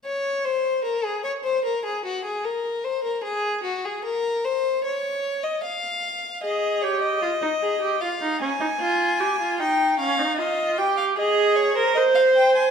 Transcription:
X:1
M:4/4
L:1/16
Q:1/4=76
K:Abmix
V:1 name="Violin"
d2 c2 B A d c B A G A B2 c B | A2 G A B2 c2 d3 e f4 | e2 d e4- e f2 a6 | =g2 f2 e2 g f e2 d c e f g a |]
V:2 name="Viola"
z16 | z16 | A2 =G2 F E A G F E D E F2 G F | E2 D E F2 =G2 A3 B c4 |]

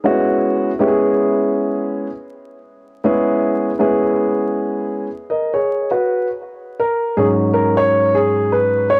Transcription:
X:1
M:4/4
L:1/16
Q:"Swing 16ths" 1/4=80
K:G#m
V:1 name="Grand piano"
[G,B,CEF]4 [G,B,CE=G^G]6 z6 | [G,B,CEG]4 [G,B,CEG]6 z2 [Ad] [Gc]2 [FB]- | [FB] z3 A2 G2 A c2 G2 B2 c |]
V:2 name="Grand piano" clef=bass
z16 | z16 | z6 [G,,F,C]8- [G,,F,C]2 |]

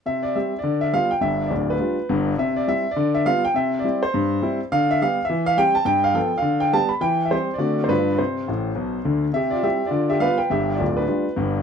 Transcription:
X:1
M:4/4
L:1/16
Q:"Swing" 1/4=206
K:C
V:1 name="Grand piano"
e2 d2 e3 d3 e2 f2 g2 | e3 d3 B8 z2 | e2 d2 e3 d3 e2 f2 g2 | e3 d3 c8 z2 |
f2 e2 f3 e3 f2 g2 a2 | g2 f2 g3 f3 g2 a2 b2 | g3 e c3 d d3 c B3 d | c12- c2 z2 |
[Ge]2 [Fd]2 [Ge]3 [Fd]3 [Ge]2 [Bf]2 [Bg]2 | [Ge]3 [Fd]3 [DB]8 z2 |]
V:2 name="Grand piano" clef=bass
C,4 [G,CG]4 D,4 [G,B,F]4 | [G,,,G,,]4 [D,,,D,,]4 [G,DF]4 [G,,,G,,]4 | C,4 [G,CE]4 D,4 [G,B,F]4 | C,4 [G,CE]4 G,,4 [G,CE]4 |
D,4 [G,B,G]4 E,4 [G,CG]4 | G,,4 [F,B,A]4 D,4 [G,B,G]4 | E,4 [G,CG]4 [D,A,C^F]4 [G,,G,D=F]4 | C,4 [A,,,A,,]4 [B,,,B,,]4 [D,,D,]4 |
C,4 [G,CE]4 D,4 [G,B,F]4 | [G,,,G,,]4 [D,,,D,,]4 [G,DF]4 [G,,,G,,]4 |]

